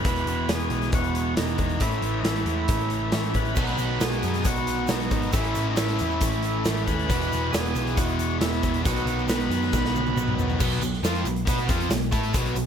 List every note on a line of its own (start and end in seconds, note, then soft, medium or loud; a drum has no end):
0.00 0.51 B4 medium
0.05 0.25 E1 medium
0.05 0.47 E2 medium
0.05 0.48 B2 medium
0.05 0.30 E3 loud
0.05 0.28 G#3 loud
0.05 0.28 B3 medium
0.05 0.27 E4 loud
0.05 kick loud
0.05 closed hi-hat loud
0.16 closed hi-hat medium
0.26 0.48 E1 medium
0.26 0.49 G#3 medium
0.26 0.50 B3 medium
0.26 0.51 E4 medium
0.26 closed hi-hat medium
0.30 0.49 E3 medium
0.48 0.70 E1 medium
0.48 0.92 E2 loud
0.48 0.93 B2 medium
0.48 0.72 E3 loud
0.48 0.71 G#3 loud
0.48 0.69 B3 loud
0.48 0.70 E4 loud
0.48 0.91 G#4 loud
0.48 snare loud
0.48 closed hi-hat loud
0.59 closed hi-hat medium
0.70 0.92 B1 loud
0.70 1.35 E3 medium
0.70 1.37 G#3 medium
0.70 1.37 B3 medium
0.70 1.37 E4 medium
0.70 closed hi-hat medium
0.82 snare soft
0.82 closed hi-hat soft
0.92 1.35 E1 medium
0.92 1.35 F#4 loud
0.92 kick loud
0.92 closed hi-hat loud
1.04 closed hi-hat soft
1.15 closed hi-hat medium
1.36 1.57 E1 medium
1.36 1.59 E3 medium
1.36 1.58 G#3 medium
1.36 1.57 B3 medium
1.36 1.83 D#4 medium
1.36 1.56 E4 medium
1.36 snare loud
1.36 closed hi-hat loud
1.47 closed hi-hat medium
1.57 1.81 E1 medium
1.57 1.79 E3 medium
1.57 1.80 G#3 medium
1.57 1.79 B3 medium
1.57 1.79 E4 medium
1.57 kick medium
1.57 closed hi-hat medium
1.69 closed hi-hat soft
1.79 2.01 A1 loud
1.79 2.22 A2 medium
1.79 2.23 E3 medium
1.79 2.04 A3 loud
1.79 2.03 C#4 loud
1.79 2.19 E4 loud
1.79 2.01 E4 loud
1.79 kick loud
1.79 closed hi-hat loud
1.91 closed hi-hat soft
2.02 2.23 A1 medium
2.02 2.23 A3 medium
2.02 2.25 C#4 medium
2.02 2.25 E4 medium
2.02 closed hi-hat medium
2.20 2.45 A1 medium
2.20 2.68 A2 medium
2.20 2.26 D#4 medium
2.24 2.69 E3 loud
2.24 2.47 A3 loud
2.24 2.46 C#4 loud
2.24 3.39 E4 medium
2.24 2.44 E4 loud
2.24 snare loud
2.24 closed hi-hat loud
2.36 closed hi-hat soft
2.46 2.68 E2 medium
2.46 3.12 A3 medium
2.46 3.13 C#4 medium
2.46 3.14 E4 medium
2.46 closed hi-hat medium
2.68 3.11 A1 medium
2.68 kick loud
2.68 closed hi-hat loud
2.79 closed hi-hat soft
2.90 closed hi-hat medium
3.12 3.34 A1 medium
3.12 3.55 E3 medium
3.12 3.35 A3 medium
3.12 3.34 C#4 medium
3.12 3.33 E4 medium
3.12 snare loud
3.12 closed hi-hat medium
3.24 closed hi-hat soft
3.34 3.56 A1 medium
3.34 3.56 A3 medium
3.34 3.56 C#4 medium
3.34 3.55 E4 medium
3.34 4.04 B4 medium
3.34 kick medium
3.34 closed hi-hat medium
3.45 closed hi-hat soft
3.55 3.78 B1 medium
3.55 3.98 B2 loud
3.55 5.33 D#3 medium
3.55 3.99 F#3 medium
3.55 3.80 B3 medium
3.55 3.79 D#4 loud
3.55 3.77 F#4 loud
3.55 kick loud
3.55 crash loud
3.55 shaker loud
3.61 5.34 D#4 loud
3.67 closed hi-hat soft
3.78 4.00 B1 medium
3.78 4.00 B3 medium
3.78 4.00 D#4 medium
3.78 4.01 F#4 medium
3.78 closed hi-hat medium
3.78 shaker medium
3.99 4.22 B1 loud
3.99 4.44 B2 loud
3.99 4.45 F#3 medium
3.99 4.24 B3 loud
3.99 4.23 D#4 loud
3.99 4.21 F#4 loud
3.99 4.47 G#4 loud
3.99 snare loud
3.99 closed hi-hat loud
3.99 shaker loud
4.12 closed hi-hat soft
4.23 4.45 F#2 medium
4.23 4.89 B3 medium
4.23 4.90 D#4 medium
4.23 4.91 F#4 medium
4.23 closed hi-hat medium
4.23 shaker medium
4.34 snare soft
4.34 closed hi-hat medium
4.34 shaker soft
4.44 4.88 B1 medium
4.44 4.91 F#4 loud
4.44 kick loud
4.44 closed hi-hat loud
4.44 shaker loud
4.55 closed hi-hat soft
4.55 shaker soft
4.67 closed hi-hat medium
4.67 shaker medium
4.78 shaker soft
4.87 5.10 B1 loud
4.87 5.32 F#3 medium
4.87 5.12 B3 medium
4.87 5.31 D#4 medium
4.87 5.11 D#4 medium
4.87 snare loud
4.87 closed hi-hat loud
4.87 shaker medium
4.92 5.09 F#4 medium
5.00 closed hi-hat soft
5.10 5.33 G#1 medium
5.10 5.33 B3 medium
5.10 5.32 D#4 medium
5.10 5.31 F#4 medium
5.10 kick medium
5.10 closed hi-hat medium
5.10 shaker medium
5.22 closed hi-hat soft
5.33 5.55 A1 medium
5.33 5.75 A2 loud
5.33 5.77 E3 medium
5.33 5.57 A3 loud
5.33 5.55 C#4 loud
5.33 5.68 E4 medium
5.33 5.55 E4 loud
5.33 kick loud
5.33 closed hi-hat loud
5.33 shaker medium
5.44 closed hi-hat soft
5.55 5.78 A1 medium
5.55 5.77 A3 medium
5.55 5.77 C#4 medium
5.55 5.79 E4 medium
5.55 closed hi-hat medium
5.55 shaker medium
5.70 5.77 D#4 medium
5.76 5.99 A1 medium
5.76 6.21 A2 loud
5.76 6.64 E3 loud
5.76 6.00 A3 loud
5.76 6.00 C#4 loud
5.76 6.84 E4 medium
5.76 5.99 E4 loud
5.76 snare loud
5.76 closed hi-hat loud
5.76 shaker loud
5.89 closed hi-hat soft
5.99 6.21 E2 medium
5.99 6.65 A3 medium
5.99 6.66 C#4 medium
5.99 6.67 E4 medium
5.99 closed hi-hat medium
5.99 shaker medium
6.11 shaker soft
6.21 6.64 A1 medium
6.21 kick loud
6.21 closed hi-hat loud
6.21 shaker loud
6.32 closed hi-hat soft
6.32 shaker soft
6.43 closed hi-hat medium
6.43 shaker medium
6.65 6.87 A1 loud
6.65 7.08 E3 medium
6.65 6.88 A3 medium
6.65 6.87 C#4 medium
6.65 6.85 E4 medium
6.65 snare loud
6.65 closed hi-hat loud
6.65 shaker medium
6.77 closed hi-hat soft
6.86 7.09 D#2 medium
6.86 7.09 A3 medium
6.86 7.08 C#4 medium
6.86 7.08 E4 medium
6.86 7.55 B4 loud
6.86 kick medium
6.86 closed hi-hat medium
6.86 shaker medium
6.99 closed hi-hat soft
7.09 7.31 E1 medium
7.09 7.51 E2 loud
7.09 7.52 B2 medium
7.09 7.31 E3 loud
7.09 7.30 G#3 loud
7.09 7.30 B3 loud
7.09 7.28 E4 loud
7.09 kick loud
7.09 closed hi-hat loud
7.09 shaker loud
7.22 closed hi-hat soft
7.30 7.53 E1 medium
7.30 7.52 E3 medium
7.30 7.52 G#3 medium
7.30 7.53 B3 medium
7.30 7.53 E4 medium
7.30 closed hi-hat medium
7.30 shaker medium
7.52 7.75 E1 loud
7.52 7.97 E2 medium
7.52 7.97 B2 loud
7.52 7.76 E3 loud
7.52 7.75 G#3 loud
7.52 7.75 B3 loud
7.52 7.73 E4 loud
7.52 7.98 G#4 loud
7.52 snare loud
7.52 closed hi-hat loud
7.52 shaker loud
7.66 closed hi-hat medium
7.74 7.97 B1 loud
7.74 8.39 E3 medium
7.74 8.40 G#3 medium
7.74 8.42 B3 medium
7.74 8.41 E4 medium
7.74 closed hi-hat medium
7.74 shaker medium
7.87 closed hi-hat soft
7.87 shaker soft
7.97 8.40 E1 medium
7.97 8.38 F#4 loud
7.97 kick loud
7.97 closed hi-hat loud
7.97 shaker loud
8.08 closed hi-hat soft
8.19 closed hi-hat medium
8.19 shaker medium
8.30 shaker soft
8.40 8.62 E1 medium
8.40 8.64 E3 medium
8.40 8.62 G#3 medium
8.40 8.63 B3 medium
8.40 8.82 E4 medium
8.40 8.61 E4 medium
8.40 snare loud
8.40 closed hi-hat loud
8.40 shaker medium
8.53 closed hi-hat soft
8.63 8.85 E1 medium
8.63 8.85 E3 medium
8.63 8.84 G#3 medium
8.63 8.86 B3 medium
8.63 8.84 E4 medium
8.63 kick medium
8.63 closed hi-hat medium
8.63 shaker medium
8.74 closed hi-hat soft
8.85 9.05 B1 loud
8.85 9.26 B2 medium
8.85 10.59 D#3 loud
8.85 9.27 F#3 medium
8.85 9.08 B3 loud
8.85 9.06 D#4 loud
8.85 9.26 F#4 loud
8.85 9.05 F#4 loud
8.85 kick loud
8.85 closed hi-hat loud
8.85 shaker medium
8.96 closed hi-hat soft
8.96 shaker soft
9.06 9.26 B1 medium
9.06 9.28 B3 medium
9.06 9.28 D#4 medium
9.06 9.29 F#4 medium
9.06 closed hi-hat medium
9.06 shaker medium
9.19 shaker soft
9.27 9.48 B1 medium
9.27 9.72 B2 medium
9.27 9.72 F#3 loud
9.27 9.52 B3 loud
9.27 9.50 D#4 loud
9.27 9.48 F#4 loud
9.27 10.34 B4 medium
9.27 snare loud
9.27 closed hi-hat loud
9.27 shaker loud
9.40 closed hi-hat soft
9.40 shaker soft
9.49 9.71 F#2 medium
9.49 10.14 B3 medium
9.49 10.15 D#4 medium
9.49 10.16 F#4 medium
9.49 closed hi-hat medium
9.49 shaker medium
9.62 snare soft
9.62 shaker soft
9.73 10.15 B1 medium
9.73 kick loud
9.73 snare medium
9.73 shaker medium
9.85 snare medium
9.85 shaker soft
9.95 high tom medium
9.95 shaker medium
10.06 high tom medium
10.06 shaker soft
10.15 10.37 B1 medium
10.15 10.58 F#3 medium
10.15 10.38 B3 medium
10.15 10.37 D#4 medium
10.15 10.35 F#4 medium
10.15 mid tom medium
10.15 shaker medium
10.28 mid tom medium
10.36 10.59 B1 medium
10.36 10.58 B3 medium
10.36 10.59 D#4 medium
10.36 10.58 F#4 medium
10.36 floor tom medium
10.36 shaker medium
10.49 floor tom medium
10.49 shaker soft
10.59 10.80 B1 medium
10.59 10.81 B2 medium
10.59 10.81 F#3 loud
10.59 10.81 B3 loud
10.59 kick medium
10.59 crash loud
10.59 shaker loud
10.72 closed hi-hat soft
10.81 11.02 B1 medium
10.81 10.99 B2 medium
10.81 10.99 F#3 medium
10.81 closed hi-hat medium
10.81 shaker medium
10.93 snare soft
11.02 11.23 F2 medium
11.02 11.24 F3 loud
11.02 11.25 C4 loud
11.02 11.25 F4 loud
11.02 snare loud
11.02 closed hi-hat medium
11.02 shaker loud
11.15 closed hi-hat medium
11.24 11.45 B1 medium
11.24 11.43 B2 medium
11.24 11.43 F#3 medium
11.24 closed hi-hat medium
11.24 shaker medium
11.36 closed hi-hat soft
11.45 11.68 B2 medium
11.45 11.67 B3 loud
11.45 11.68 F#4 medium
11.45 11.68 B4 loud
11.45 kick loud
11.45 closed hi-hat loud
11.45 shaker loud
11.58 snare soft
11.58 closed hi-hat soft
11.66 11.88 F2 loud
11.66 11.89 F3 medium
11.66 11.89 C4 medium
11.66 11.90 F4 loud
11.66 kick loud
11.66 closed hi-hat medium
11.66 shaker medium
11.80 closed hi-hat medium
11.89 12.10 B1 medium
11.89 12.08 B2 medium
11.89 12.08 F#3 medium
11.89 snare loud
11.89 closed hi-hat loud
11.89 shaker loud
12.01 closed hi-hat medium
12.11 12.33 A2 medium
12.11 12.33 A3 loud
12.11 12.33 E4 loud
12.11 12.34 A4 loud
12.11 kick loud
12.11 closed hi-hat medium
12.11 shaker medium
12.23 closed hi-hat soft
12.33 12.54 B1 loud
12.33 12.54 B2 loud
12.33 12.55 F#3 loud
12.33 12.55 B3 loud
12.33 kick loud
12.33 closed hi-hat loud
12.33 shaker loud
12.46 closed hi-hat medium
12.55 12.66 B1 medium
12.55 12.66 B2 medium
12.55 12.66 F#3 medium
12.55 closed hi-hat medium
12.55 shaker medium